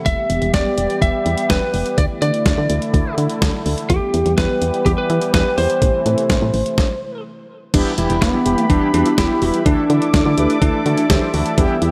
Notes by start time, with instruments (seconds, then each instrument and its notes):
Already playing: analog synth pad E3
0.06 fm bass E1, analog synth pad G3 B3 G4, lead electric guitar E5, kick, closed hi-hat
0.30 fm bass E1, closed hi-hat
0.42 fm bass E1, closed hi-hat
0.54 fm bass E1, lead electric guitar D5, kick, snare, closed hi-hat
0.78 fm bass E1, closed hi-hat
0.90 closed hi-hat
1.02 fm bass E1, lead electric guitar E5, kick, closed hi-hat
1.26 fm bass E2, closed hi-hat
1.38 closed hi-hat
1.50 fm bass E1, lead electric guitar B4, kick, snare, closed hi-hat
1.74 fm bass E1, open hi-hat
1.86 closed hi-hat
1.98 fm bass D2, analog synth pad D3 A3 E4, lead electric guitar D5, kick, closed hi-hat
2.22 fm bass D3, lead electric guitar D5, closed hi-hat
2.34 closed hi-hat
2.46 fm bass D2, kick, snare, closed hi-hat
2.58 fm bass D3
2.70 fm bass D2, closed hi-hat
2.82 closed hi-hat
2.94 fm bass D2, kick, closed hi-hat
3.18 fm bass D3, closed hi-hat
3.30 closed hi-hat
3.42 fm bass D2, kick, snare, closed hi-hat
3.66 fm bass D2, open hi-hat
3.78 closed hi-hat
3.90 fm bass E2, analog synth pad E3 G3 B3 G4, lead electric guitar G4, kick, closed hi-hat
4.14 fm bass E2, closed hi-hat
4.26 fm bass E2, closed hi-hat
4.38 fm bass E2, lead electric guitar B4, kick, snare, closed hi-hat
4.62 fm bass E2, closed hi-hat
4.74 closed hi-hat
4.86 fm bass E2, lead electric guitar G4, kick, closed hi-hat
4.98 lead electric guitar B4
5.10 fm bass E3, closed hi-hat
5.22 closed hi-hat
5.34 fm bass E2, lead electric guitar B4, kick, snare, closed hi-hat
5.58 fm bass E2, lead electric guitar C5, open hi-hat
5.70 closed hi-hat
5.82 fm bass A1, analog synth pad C3 E3 A3 E4, kick, closed hi-hat
6.06 fm bass A2, closed hi-hat
6.18 closed hi-hat
6.30 fm bass A1, kick, snare, closed hi-hat
6.42 fm bass A2
6.54 fm bass A1, open hi-hat
6.66 closed hi-hat
6.78 kick, snare
7.74 fm bass E1, analog polysynth E3 G3 B3 E4 G4, synth pluck D4, analog synth pad G4 B4 E5 B5, kick, closed hi-hat, crash
7.98 fm bass E1, analog polysynth E3 G3 B3 E4 G4, synth pluck E4, closed hi-hat
8.10 fm bass E1, closed hi-hat
8.22 fm bass E1, analog polysynth E3 G3 B3 E4 G4, lead electric guitar B3, synth pluck D4, kick, snare, closed hi-hat
8.34 synth pluck E4
8.46 fm bass E1, analog polysynth E3 G3 B3 E4 G4, synth pluck G4, closed hi-hat
8.58 closed hi-hat
8.70 fm bass E1, analog polysynth E3 G3 B3 E4 G4, lead electric guitar D4, kick, closed hi-hat
8.94 fm bass E2, analog polysynth E3 G3 B3 E4 G4, lead electric guitar D4, synth pluck F#4, closed hi-hat
9.06 synth pluck E4, closed hi-hat
9.18 fm bass E1, analog polysynth E3 G3 B3 E4 G4, lead electric guitar E4, synth pluck G4, kick, snare, closed hi-hat
9.42 fm bass E1, analog polysynth E3 G3 B3 E4 G4, synth pluck F#4, open hi-hat
9.54 closed hi-hat
9.66 fm bass D2, analog polysynth E3 A3 D4 E4 A4, synth pluck D4, lead electric guitar D4, analog synth pad A4 D5 D6, kick, closed hi-hat
9.90 fm bass D3, analog polysynth E3 A3 D4 E4 A4, synth pluck E4, closed hi-hat
10.02 closed hi-hat
10.14 fm bass D2, analog polysynth E3 A3 D4 E4 A4, synth pluck D4, kick, snare, closed hi-hat
10.26 fm bass D3, synth pluck E4
10.38 fm bass D2, analog polysynth E3 A3 D4 E4 B4, synth pluck G4, closed hi-hat
10.50 closed hi-hat
10.62 fm bass D2, analog polysynth E3 A3 D4 E4 A4, lead electric guitar D4, kick, closed hi-hat
10.86 fm bass D3, analog polysynth E3 A3 D4 E4 A4, synth pluck F#4, closed hi-hat
10.98 synth pluck E4, closed hi-hat
11.10 fm bass D2, analog polysynth E3 A3 D4 E4 C5, synth pluck G4, kick, snare, closed hi-hat
11.34 fm bass D2, analog polysynth E3 A3 D4 E4 A4, synth pluck F#4, open hi-hat
11.46 closed hi-hat
11.58 fm bass E2, analog polysynth E3 G3 B3 E4 G4, synth pluck D4, analog synth pad B4 G5 E6, kick, closed hi-hat
11.82 fm bass E2, analog polysynth E3 G3 B3 E4 G4, synth pluck E4, closed hi-hat